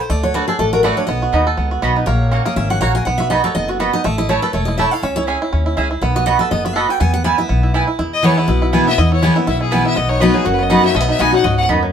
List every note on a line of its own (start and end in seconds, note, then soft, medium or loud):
0.10 0.41 D2 medium
0.10 0.45 A3 medium
0.10 0.23 D5 medium
0.23 0.73 F#4 medium
0.23 0.34 C#5 medium
0.34 0.44 A3 medium
0.34 0.70 D4 medium
0.34 0.45 F#4 medium
0.34 0.47 B4 medium
0.34 0.45 D5 medium
0.34 0.45 F#5 medium
0.48 0.59 G#4 medium
0.48 0.82 A4 medium
0.59 0.90 A1 medium
0.59 0.83 A3 medium
0.59 0.72 A4 medium
0.73 1.22 F#4 medium
0.73 0.83 A#4 medium
0.83 0.94 A3 loud
0.83 1.08 A3 medium
0.83 0.94 F#4 loud
0.83 0.97 B4 medium
0.83 0.94 D5 loud
0.83 0.94 F#5 loud
0.97 1.09 D4 medium
0.97 1.06 C#5 medium
1.07 1.24 B1 medium
1.07 1.44 B3 medium
1.07 1.43 D#5 medium
1.22 1.71 F#4 medium
1.32 1.54 D#2 medium
1.32 1.43 B3 medium
1.32 1.69 D#4 medium
1.32 1.43 F#4 medium
1.32 1.43 D#5 loud
1.32 1.43 B5 medium
1.47 1.80 A4 medium
1.57 1.79 C#2 medium
1.57 1.81 B3 medium
1.71 2.70 F#4 medium
1.82 2.03 B1 medium
1.82 2.07 B3 medium
1.82 1.92 B3 loud
1.82 1.93 F#4 loud
1.82 1.93 D#5 loud
1.82 1.93 B5 loud
1.96 2.07 D#4 medium
2.06 2.39 A#1 medium
2.06 2.43 A#3 medium
2.06 2.42 C#5 medium
2.31 2.42 A#3 loud
2.31 2.56 C#4 medium
2.31 2.42 F#4 medium
2.31 2.42 C#5 loud
2.31 2.42 F#5 loud
2.45 2.79 A#3 medium
2.45 2.56 D#5 loud
2.56 2.77 G#1 loud
2.56 2.92 C#4 medium
2.56 2.70 E5 medium
2.70 2.81 F#4 medium
2.70 2.80 F#5 loud
2.81 3.02 A#1 medium
2.81 2.91 A#3 loud
2.81 2.91 F#4 loud
2.81 3.06 F#4 medium
2.81 2.91 C#5 medium
2.81 2.92 F#5 loud
2.81 2.94 A#5 loud
2.95 3.06 A#3 medium
2.95 3.05 G#5 loud
3.05 3.38 B1 medium
3.05 3.42 B3 medium
3.05 3.19 F#5 medium
3.18 3.53 F#4 medium
3.18 3.29 E5 medium
3.30 3.40 B3 medium
3.30 3.66 D#4 medium
3.30 3.41 F#4 loud
3.30 3.43 D#5 loud
3.30 3.41 D#5 medium
3.30 3.41 B5 medium
3.44 3.78 A4 medium
3.44 3.54 C#5 loud
3.55 3.87 F#1 loud
3.55 3.79 B3 medium
3.55 3.68 D#5 loud
3.68 3.79 F#4 soft
3.68 4.02 F#4 medium
3.80 3.90 B3 medium
3.80 4.04 B3 medium
3.80 3.90 F#4 loud
3.80 3.93 B4 medium
3.80 3.90 D#5 loud
3.80 3.90 B5 loud
3.93 4.05 D#4 medium
3.93 4.04 D#5 loud
4.04 4.37 A1 medium
4.04 4.28 A3 medium
4.04 4.18 E5 medium
4.18 4.52 E4 medium
4.18 4.29 D#5 loud
4.29 4.39 A3 loud
4.29 4.53 A3 medium
4.29 4.39 E4 loud
4.29 4.42 C#5 medium
4.29 4.40 C#5 loud
4.29 4.40 A5 loud
4.42 4.76 A4 medium
4.42 4.53 B4 medium
4.53 4.85 E1 medium
4.53 4.90 A3 medium
4.53 4.67 C#5 medium
4.65 4.92 E4 medium
4.65 4.77 D#5 medium
4.78 4.88 A3 loud
4.78 4.89 E4 loud
4.78 5.04 A4 medium
4.78 4.89 C#5 loud
4.78 4.91 E5 medium
4.78 4.89 A5 loud
4.91 5.04 E4 medium
4.91 5.03 F5 loud
5.03 5.34 C#2 medium
5.03 5.27 C#4 medium
5.03 5.16 E5 medium
5.16 5.41 E4 medium
5.16 5.23 C#5 loud
5.27 5.37 C#4 medium
5.27 5.51 C#4 medium
5.27 5.38 G#4 medium
5.27 5.38 E5 loud
5.27 5.38 G#5 loud
5.42 5.65 E4 medium
5.53 5.74 D#2 medium
5.53 5.88 C#4 medium
5.66 5.76 E4 medium
5.77 5.98 C#2 medium
5.77 5.87 C#4 loud
5.77 5.90 E4 medium
5.77 5.87 G#4 medium
5.77 5.87 E5 loud
5.77 5.88 G#5 loud
5.91 6.02 E4 medium
6.01 6.33 B1 medium
6.01 6.27 B3 medium
6.01 6.15 B4 medium
6.16 6.49 F#4 medium
6.16 6.25 D#5 loud
6.26 6.36 B3 medium
6.26 6.51 B3 medium
6.26 6.36 F#4 loud
6.26 6.37 D#5 loud
6.26 6.39 F#5 loud
6.26 6.37 B5 loud
6.39 6.74 A4 medium
6.39 6.50 E5 loud
6.51 6.83 F#1 loud
6.51 7.00 B3 medium
6.51 6.64 D#5 medium
6.65 6.88 F#4 medium
6.65 6.75 E5 medium
6.75 6.86 B3 loud
6.75 6.86 F#4 loud
6.75 7.01 A4 medium
6.75 6.86 D#5 medium
6.75 6.90 F#5 medium
6.75 6.86 B5 loud
6.89 7.00 F#4 medium
6.89 7.00 G5 medium
7.00 7.32 E2 loud
7.00 7.24 B3 medium
7.00 7.13 G#5 loud
7.14 7.24 F#5 loud
7.24 7.35 B3 medium
7.24 7.48 B3 medium
7.24 7.35 E4 medium
7.24 7.35 B4 loud
7.24 7.37 E5 loud
7.24 7.35 G#5 loud
7.38 7.62 E4 medium
7.38 7.72 E5 loud
7.49 7.81 B1 loud
7.49 7.85 B3 medium
7.63 7.73 E4 medium
7.74 7.84 B3 medium
7.74 7.86 E4 medium
7.74 7.84 E4 loud
7.74 7.85 B4 loud
7.74 7.85 G#5 loud
7.87 7.98 E4 medium
7.99 8.31 E2 medium
7.99 8.46 E2 medium
7.99 8.35 E4 medium
8.14 8.26 D#5 loud
8.23 8.47 E3 loud
8.23 8.47 G#3 loud
8.23 8.33 B3 medium
8.23 8.73 B3 medium
8.23 8.48 B3 loud
8.23 8.34 E4 loud
8.23 8.48 E4 loud
8.23 8.34 B4 medium
8.23 8.40 C#5 medium
8.23 8.34 G#5 loud
8.38 8.47 E4 medium
8.38 8.63 B4 medium
8.48 8.80 B1 medium
8.48 8.95 B2 medium
8.48 8.61 E4 medium
8.62 8.86 E4 medium
8.73 8.86 E3 medium
8.73 8.87 G#3 medium
8.73 8.83 B3 loud
8.73 9.22 B3 medium
8.73 8.87 B3 medium
8.73 8.83 E4 loud
8.73 8.87 E4 medium
8.73 8.83 B4 loud
8.73 8.83 G#5 loud
8.87 8.99 B3 soft
8.87 8.97 E4 medium
8.87 8.98 E4 medium
8.87 9.00 E5 loud
8.98 9.30 E2 medium
8.98 9.46 E2 medium
8.98 9.11 E4 medium
8.98 9.12 D#5 medium
9.12 9.35 E4 medium
9.12 9.35 C#5 loud
9.22 9.36 E3 loud
9.22 9.36 G#3 loud
9.22 9.32 B3 medium
9.22 9.71 B3 medium
9.22 9.37 B3 loud
9.22 9.33 E4 loud
9.22 9.34 E4 loud
9.22 9.33 B4 loud
9.22 9.33 G#5 loud
9.36 9.48 B3 soft
9.36 9.47 E4 medium
9.36 9.46 E4 medium
9.47 9.79 B1 medium
9.47 9.94 B2 medium
9.47 9.60 E4 medium
9.47 9.61 E5 medium
9.61 9.84 E4 soft
9.61 9.74 G#4 medium
9.71 9.95 E3 medium
9.71 9.96 G#3 medium
9.71 9.81 B3 loud
9.71 9.96 B3 medium
9.71 9.82 E4 loud
9.71 9.96 E4 medium
9.71 9.82 B4 loud
9.71 9.85 B4 medium
9.71 9.82 G#5 loud
9.85 9.97 E4 medium
9.85 9.98 E5 loud
9.96 10.28 B1 loud
9.96 10.44 B2 medium
9.96 10.58 B3 medium
9.96 10.10 D#5 loud
10.09 10.43 D#4 medium
10.09 10.22 C#5 loud
10.20 10.35 F#3 loud
10.20 10.31 B3 loud
10.20 10.35 B3 loud
10.20 10.35 D#4 loud
10.20 10.43 F#4 medium
10.20 10.31 F#4 loud
10.20 10.34 F#4 loud
10.20 10.35 B4 medium
10.20 10.31 D#5 loud
10.20 10.31 B5 loud
10.34 10.68 F#3 medium
10.34 10.46 D#4 soft
10.34 10.45 F#4 medium
10.34 10.47 G#4 loud
10.45 10.77 F#1 medium
10.45 10.93 F#2 loud
10.45 10.81 F#4 medium
10.45 10.55 F#4 medium
10.54 10.64 B4 medium
10.59 10.94 B3 soft
10.59 10.73 D#5 medium
10.70 10.83 F#3 medium
10.70 10.80 B3 loud
10.70 10.84 B3 loud
10.70 11.06 D#4 medium
10.70 10.83 D#4 medium
10.70 10.80 F#4 loud
10.70 10.82 F#4 medium
10.70 10.81 D#5 loud
10.70 10.85 F#5 loud
10.70 10.81 B5 loud
10.83 11.17 F#3 medium
10.83 10.95 D#4 soft
10.83 10.94 F#4 medium
10.83 10.97 E5 loud
10.95 11.11 B1 medium
10.95 11.42 B2 medium
10.95 11.00 A3 medium
10.95 11.09 D#5 medium
11.00 11.20 B3 medium
11.09 11.42 D#4 medium
11.09 11.22 E5 loud
11.19 11.41 B1 medium
11.19 11.32 F#3 loud
11.19 11.33 B3 loud
11.19 11.29 B3 loud
11.19 11.33 D#4 loud
11.19 11.30 F#4 loud
11.19 11.44 F#4 medium
11.19 11.31 F#4 loud
11.19 11.30 D#5 loud
11.19 11.34 G#5 loud
11.19 11.30 B5 loud
11.32 11.67 F#3 medium
11.32 11.44 D#4 medium
11.32 11.43 F#4 medium
11.32 11.45 F#5 loud
11.44 11.65 C#2 medium
11.44 11.68 G#2 medium
11.44 11.80 F#4 medium
11.44 11.57 D#5 medium
11.57 11.92 B3 medium
11.57 11.64 F#5 loud
11.69 11.90 D#2 medium
11.69 11.92 F#2 medium
11.69 11.79 B3 loud
11.69 11.92 D#4 medium
11.69 11.79 F#4 medium
11.69 11.79 D#5 loud
11.69 11.79 B5 loud
11.83 11.92 F#3 medium